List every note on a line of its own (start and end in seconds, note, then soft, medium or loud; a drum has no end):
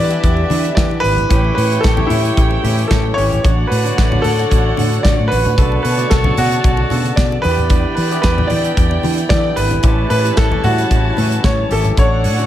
0.00 1.28 D3 medium
0.00 0.10 E3 medium
0.00 0.16 E3 loud
0.00 1.00 G3 medium
0.00 3.40 G3 medium
0.00 0.11 B3 medium
0.00 1.26 B3 medium
0.00 1.28 B3 medium
0.00 0.11 D4 medium
0.00 1.00 E4 medium
0.00 3.40 E4 medium
0.00 0.11 G4 medium
0.00 1.26 G4 medium
0.00 1.00 B4 medium
0.00 0.73 D5 loud
0.00 1.26 E5 medium
0.10 0.63 E3 medium
0.10 0.63 B3 medium
0.10 0.63 D4 medium
0.10 0.63 G4 medium
0.10 muted clean electric guitar stroke medium
0.10 closed hi-hat medium
0.24 0.43 E2 medium
0.24 muted clean electric guitar stroke soft
0.24 kick loud
0.24 closed hi-hat medium
0.37 muted clean electric guitar stroke medium
0.37 muted conga soft
0.50 0.70 E3 medium
0.50 0.65 D4 medium
0.50 0.64 G4 medium
0.50 0.64 B4 medium
0.50 0.63 D5 medium
0.50 open hi-hat medium
0.50 high conga medium
0.64 muted clean electric guitar stroke soft
0.64 closed hi-hat soft
0.75 1.19 E3 medium
0.75 0.96 E3 loud
0.75 1.19 B3 medium
0.75 1.19 D4 medium
0.75 1.20 G4 medium
0.75 1.04 D5 medium
0.75 kick loud
0.75 snare loud
0.75 closed hi-hat medium
0.75 muted conga soft
0.75 high conga medium
0.90 muted clean electric guitar stroke medium
0.90 muted conga soft
1.00 1.23 G#1 loud
1.00 1.53 B4 loud
1.04 open hi-hat medium
1.16 muted clean electric guitar stroke soft
1.16 closed hi-hat soft
1.16 low conga medium
1.29 1.50 A1 loud
1.29 3.42 C#3 loud
1.29 1.82 E3 medium
1.29 1.82 A3 medium
1.29 3.13 A3 medium
1.29 1.55 A3 medium
1.29 3.42 A3 medium
1.29 1.82 C#4 medium
1.29 3.39 E4 medium
1.29 1.55 E4 medium
1.29 3.13 G4 medium
1.29 1.83 G4 medium
1.29 1.55 G4 medium
1.29 3.13 C#5 medium
1.29 3.40 C#5 medium
1.29 1.55 C#5 medium
1.29 3.40 G5 loud
1.29 kick loud
1.29 closed hi-hat medium
1.44 muted conga soft
1.55 1.77 A2 medium
1.55 1.84 B4 loud
1.55 open hi-hat medium
1.71 1.82 A3 medium
1.71 1.82 E4 medium
1.71 1.81 G4 medium
1.71 1.81 E5 medium
1.71 closed hi-hat medium
1.80 2.04 A1 loud
1.80 2.10 A4 loud
1.80 kick loud
1.80 muted conga soft
1.85 snare loud
1.85 closed hi-hat medium
1.97 2.49 E3 medium
1.97 2.50 A3 medium
1.97 2.09 A3 medium
1.97 2.50 C#4 medium
1.97 2.10 E4 medium
1.97 2.50 G4 medium
1.97 2.10 G4 medium
1.97 2.11 C#5 medium
1.97 high conga medium
1.97 low conga medium
2.07 2.30 A2 loud
2.07 2.22 A3 medium
2.07 2.91 E4 loud
2.07 open hi-hat medium
2.07 high conga medium
2.07 low conga medium
2.11 2.23 E4 medium
2.11 2.23 G4 medium
2.11 2.23 E5 medium
2.25 closed hi-hat medium
2.37 2.57 A1 medium
2.37 muted clean electric guitar stroke soft
2.37 kick loud
2.37 closed hi-hat medium
2.51 muted clean electric guitar stroke soft
2.51 muted conga soft
2.62 2.83 A2 medium
2.62 3.06 E3 medium
2.62 3.06 A3 medium
2.62 2.79 A3 medium
2.62 3.06 C#4 medium
2.62 2.78 E4 medium
2.62 3.06 G4 medium
2.62 2.78 G4 medium
2.62 2.77 C#5 medium
2.62 open hi-hat medium
2.62 high conga medium
2.78 muted clean electric guitar stroke soft
2.78 closed hi-hat soft
2.88 3.10 A2 medium
2.88 3.06 A3 medium
2.88 3.06 E4 medium
2.88 3.17 A4 medium
2.88 kick loud
2.88 snare loud
2.88 closed hi-hat medium
2.92 3.05 G4 medium
2.92 3.04 C#5 medium
2.92 high conga medium
3.06 muted clean electric guitar stroke soft
3.14 3.37 G#1 loud
3.14 3.43 E3 medium
3.14 3.43 A3 medium
3.14 3.44 C#4 medium
3.14 3.44 G4 medium
3.14 3.71 C#5 loud
3.14 open hi-hat medium
3.18 muted clean electric guitar stroke soft
3.31 3.43 A3 soft
3.31 3.43 E4 medium
3.31 3.42 G4 medium
3.31 3.42 C#5 medium
3.31 closed hi-hat soft
3.31 low conga medium
3.44 3.64 A1 loud
3.44 5.55 D3 loud
3.44 5.27 A3 medium
3.44 7.40 A3 medium
3.44 3.69 A3 medium
3.44 5.54 D4 medium
3.44 3.69 D4 medium
3.44 5.55 F#4 medium
3.44 5.27 F#4 medium
3.44 3.69 F#4 medium
3.44 5.53 C#5 medium
3.44 3.70 C#5 medium
3.44 5.27 D5 loud
3.44 5.53 F#5 loud
3.44 kick loud
3.44 closed hi-hat medium
3.44 muted conga soft
3.67 3.90 A2 loud
3.67 4.24 B4 medium
3.67 muted clean electric guitar stroke soft
3.72 open hi-hat medium
3.84 4.26 D3 medium
3.84 4.26 A3 medium
3.84 3.96 A3 soft
3.84 3.96 D4 medium
3.84 3.95 F#4 medium
3.84 4.26 F#4 medium
3.84 4.26 C#5 medium
3.84 3.95 D5 medium
3.84 closed hi-hat medium
3.98 4.17 A1 medium
3.98 kick loud
3.98 snare loud
3.98 closed hi-hat medium
4.12 4.23 A3 medium
4.12 4.23 D4 medium
4.12 4.24 F#4 medium
4.12 4.25 C#5 medium
4.12 muted conga soft
4.12 high conga medium
4.12 low conga medium
4.22 4.44 A2 medium
4.22 4.36 A3 medium
4.22 4.36 D4 medium
4.22 4.36 F#4 medium
4.22 5.05 A4 loud
4.22 4.36 D5 medium
4.22 open hi-hat medium
4.22 high conga soft
4.22 low conga medium
4.38 4.90 D3 medium
4.38 4.90 A3 medium
4.38 4.91 F#4 medium
4.38 4.91 C#5 medium
4.38 closed hi-hat medium
4.51 4.71 A1 loud
4.51 muted clean electric guitar stroke soft
4.51 kick medium
4.51 closed hi-hat medium
4.51 muted conga soft
4.65 muted clean electric guitar stroke soft
4.77 4.97 A2 medium
4.77 4.92 A3 loud
4.77 4.91 D4 loud
4.77 4.91 F#4 medium
4.77 4.90 C#5 medium
4.77 open hi-hat medium
4.77 high conga medium
4.91 muted clean electric guitar stroke medium
4.91 closed hi-hat soft
5.03 5.15 A1 loud
5.03 5.46 D3 medium
5.03 5.19 A3 medium
5.03 5.47 A3 medium
5.03 5.47 C#4 medium
5.03 5.18 D4 medium
5.03 5.12 F4 medium
5.03 5.18 F#4 loud
5.03 5.17 C#5 loud
5.03 5.31 D5 loud
5.03 kick loud
5.03 snare loud
5.03 closed hi-hat medium
5.03 muted conga soft
5.03 high conga medium
5.12 5.51 F#4 medium
5.18 5.28 A2 medium
5.18 muted clean electric guitar stroke soft
5.28 5.81 B4 loud
5.28 muted clean electric guitar stroke soft
5.28 open hi-hat medium
5.32 5.42 A1 loud
5.45 5.54 A2 loud
5.45 5.56 A3 medium
5.45 5.56 D4 medium
5.45 5.56 F#4 medium
5.45 5.55 C#5 medium
5.45 closed hi-hat soft
5.45 low conga medium
5.57 5.77 B1 medium
5.57 7.42 B2 medium
5.57 6.10 C#3 medium
5.57 6.10 D3 medium
5.57 5.82 A3 medium
5.57 7.15 A3 medium
5.57 7.42 B3 medium
5.57 6.10 B3 medium
5.57 5.82 D4 medium
5.57 7.40 F#4 medium
5.57 7.42 F#4 medium
5.57 5.82 F#4 medium
5.57 7.15 F#4 medium
5.57 6.10 A4 medium
5.57 5.82 C#5 medium
5.57 7.15 C#5 medium
5.57 7.40 D5 medium
5.57 7.40 A5 medium
5.57 kick loud
5.57 closed hi-hat medium
5.72 muted conga soft
5.83 6.04 B2 medium
5.83 6.11 B4 medium
5.83 muted clean electric guitar stroke soft
5.83 open hi-hat medium
5.98 6.09 A3 soft
5.98 6.09 D4 medium
5.98 6.08 F#4 medium
5.98 6.08 D5 medium
5.98 closed hi-hat medium
6.10 6.31 B1 medium
6.10 6.38 A4 medium
6.10 muted clean electric guitar stroke soft
6.10 kick loud
6.10 snare loud
6.10 closed hi-hat medium
6.24 6.77 C#3 medium
6.24 6.77 D3 medium
6.24 6.35 A3 medium
6.24 6.77 B3 medium
6.24 6.36 D4 medium
6.24 6.36 F#4 medium
6.24 6.77 A4 medium
6.24 6.37 C#5 medium
6.24 muted conga soft
6.24 high conga medium
6.24 low conga medium
6.37 6.57 B2 loud
6.37 6.49 A3 medium
6.37 6.49 D4 medium
6.37 6.49 F#4 medium
6.37 7.20 F#4 loud
6.37 6.49 D5 medium
6.37 open hi-hat medium
6.37 high conga soft
6.37 low conga medium
6.51 muted clean electric guitar stroke soft
6.51 closed hi-hat medium
6.64 6.84 B1 medium
6.64 muted clean electric guitar stroke soft
6.64 kick loud
6.64 closed hi-hat medium
6.77 muted clean electric guitar stroke soft
6.77 muted conga soft
6.90 7.10 B2 medium
6.90 7.33 C#3 medium
6.90 7.33 D3 medium
6.90 7.05 A3 medium
6.90 7.33 B3 medium
6.90 7.04 D4 medium
6.90 7.04 F#4 medium
6.90 7.34 A4 medium
6.90 7.03 C#5 medium
6.90 open hi-hat medium
6.90 high conga medium
7.04 muted clean electric guitar stroke soft
7.04 closed hi-hat soft
7.16 7.37 B2 medium
7.16 7.41 D5 medium
7.16 kick loud
7.16 snare loud
7.16 closed hi-hat medium
7.16 high conga medium
7.31 muted clean electric guitar stroke soft
7.31 muted conga soft
7.42 7.83 E2 loud
7.42 9.82 D3 medium
7.42 7.97 E3 medium
7.42 11.93 G3 medium
7.42 7.97 B3 medium
7.42 9.81 B3 medium
7.42 9.53 B3 medium
7.42 7.97 D4 medium
7.42 11.93 E4 medium
7.42 9.80 E4 medium
7.42 7.51 F#4 medium
7.42 9.53 G4 medium
7.42 7.94 B4 loud
7.42 9.80 D5 medium
7.42 9.53 D5 medium
7.42 9.80 G5 medium
7.42 open hi-hat medium
7.51 8.01 G4 medium
7.57 muted clean electric guitar stroke soft
7.57 closed hi-hat soft
7.57 low conga medium
7.69 7.94 D4 medium
7.69 7.95 G4 medium
7.69 7.95 B4 medium
7.69 7.95 D5 loud
7.69 kick loud
7.69 closed hi-hat medium
7.95 8.17 E3 medium
7.95 8.20 B4 medium
7.95 open hi-hat medium
8.11 8.52 E3 medium
8.11 8.53 B3 medium
8.11 8.53 D4 medium
8.11 8.22 D4 soft
8.11 8.22 G4 medium
8.11 8.53 G4 medium
8.11 8.22 B4 medium
8.11 8.22 E5 medium
8.11 closed hi-hat soft
8.22 8.43 E2 loud
8.22 8.50 B4 loud
8.22 kick loud
8.22 snare loud
8.22 closed hi-hat medium
8.22 muted conga soft
8.37 8.49 D4 medium
8.37 8.49 G4 medium
8.37 8.50 B4 medium
8.37 8.51 D5 medium
8.37 high conga medium
8.37 low conga medium
8.47 8.62 D4 medium
8.47 8.62 G4 medium
8.47 8.63 B4 medium
8.47 8.98 D5 medium
8.47 8.62 E5 medium
8.47 open hi-hat medium
8.47 high conga medium
8.47 low conga medium
8.51 8.71 E3 loud
8.64 9.16 E3 medium
8.64 9.17 B3 medium
8.64 9.17 D4 medium
8.64 9.17 G4 medium
8.64 closed hi-hat medium
8.76 8.97 E2 medium
8.76 muted clean electric guitar stroke medium
8.76 kick loud
8.76 closed hi-hat medium
8.91 muted clean electric guitar stroke soft
8.91 muted conga soft
9.03 9.24 E3 medium
9.03 9.19 D4 medium
9.03 9.17 G4 medium
9.03 9.17 B4 medium
9.03 9.16 D5 medium
9.03 open hi-hat medium
9.03 high conga medium
9.17 muted clean electric guitar stroke soft
9.17 closed hi-hat soft
9.29 9.72 E3 medium
9.29 9.50 E3 loud
9.29 9.73 B3 medium
9.29 9.73 D4 medium
9.29 9.38 G4 medium
9.29 9.57 D5 loud
9.29 muted clean electric guitar stroke soft
9.29 kick loud
9.29 snare loud
9.29 closed hi-hat medium
9.29 muted conga soft
9.29 high conga medium
9.38 9.77 A4 medium
9.44 muted clean electric guitar stroke soft
9.56 9.77 G#1 loud
9.56 10.09 B4 loud
9.56 open hi-hat medium
9.71 muted clean electric guitar stroke soft
9.71 closed hi-hat soft
9.71 low conga medium
9.83 10.03 A1 loud
9.83 11.96 C#3 medium
9.83 10.36 E3 medium
9.83 11.67 G3 medium
9.83 10.36 A3 medium
9.83 10.09 A3 loud
9.83 12.46 A3 medium
9.83 10.36 C#4 medium
9.83 11.93 E4 medium
9.83 10.09 E4 medium
9.83 11.67 E4 medium
9.83 10.36 G4 medium
9.83 10.09 G4 loud
9.83 11.67 B4 medium
9.83 11.93 C#5 medium
9.83 10.09 C#5 medium
9.83 11.93 A5 loud
9.83 kick loud
9.83 closed hi-hat medium
9.83 muted conga soft
10.10 10.30 A2 medium
10.10 10.38 B4 loud
10.10 muted clean electric guitar stroke soft
10.10 open hi-hat medium
10.24 10.35 A3 medium
10.24 10.35 E4 medium
10.24 10.35 G4 medium
10.24 10.35 E5 medium
10.24 closed hi-hat medium
10.37 10.57 A1 medium
10.37 10.65 A4 loud
10.37 muted clean electric guitar stroke medium
10.37 kick loud
10.37 snare loud
10.37 closed hi-hat medium
10.37 muted conga soft
10.51 11.03 E3 medium
10.51 11.04 G3 medium
10.51 11.03 A3 medium
10.51 10.62 A3 medium
10.51 11.04 C#4 medium
10.51 10.63 E4 medium
10.51 10.63 G4 medium
10.51 10.64 C#5 medium
10.51 high conga medium
10.51 low conga medium
10.63 10.83 A2 loud
10.63 10.75 A3 medium
10.63 10.76 E4 medium
10.63 11.46 F#4 loud
10.63 10.76 G4 medium
10.63 10.76 E5 medium
10.63 open hi-hat medium
10.63 high conga medium
10.63 low conga medium
10.78 muted clean electric guitar stroke soft
10.78 closed hi-hat medium
10.91 11.10 A1 medium
10.91 muted clean electric guitar stroke soft
10.91 kick loud
10.91 closed hi-hat medium
11.05 muted clean electric guitar stroke soft
11.17 11.37 A2 medium
11.17 11.59 E3 medium
11.17 11.60 A3 medium
11.17 11.32 A3 medium
11.17 11.60 C#4 medium
11.17 11.31 E4 medium
11.17 11.31 G4 medium
11.17 11.60 A4 medium
11.17 11.31 C#5 medium
11.17 open hi-hat medium
11.17 high conga medium
11.32 muted clean electric guitar stroke soft
11.32 closed hi-hat soft
11.44 11.63 A2 medium
11.44 11.69 C#5 medium
11.44 kick loud
11.44 snare loud
11.44 closed hi-hat medium
11.44 muted conga soft
11.44 high conga medium
11.59 muted clean electric guitar stroke soft
11.70 11.90 G#1 loud
11.70 11.97 E3 medium
11.70 11.97 A3 medium
11.70 11.97 C#4 medium
11.70 11.98 G4 medium
11.70 11.99 A4 loud
11.70 open hi-hat medium
11.84 muted clean electric guitar stroke soft
11.84 closed hi-hat soft
11.84 low conga medium
11.97 12.26 A1 loud
11.97 12.46 D3 medium
11.97 12.46 F#3 medium
11.97 12.22 A3 medium
11.97 12.46 D4 medium
11.97 12.22 D4 medium
11.97 12.46 D4 medium
11.97 12.46 F#4 medium
11.97 12.22 F#4 loud
11.97 12.46 A4 medium
11.97 12.46 C#5 medium
11.97 12.22 C#5 medium
11.97 12.46 C#5 loud
11.97 12.46 F#5 loud
11.97 kick loud
11.97 closed hi-hat medium
11.97 muted conga soft
12.24 12.44 A2 loud
12.24 muted clean electric guitar stroke soft
12.24 open hi-hat medium
12.37 12.46 D3 medium
12.37 12.46 A3 medium
12.37 12.46 A3 soft
12.37 12.46 C#4 medium
12.37 12.46 D4 medium
12.37 12.46 F#4 medium
12.37 12.46 D5 medium
12.37 closed hi-hat soft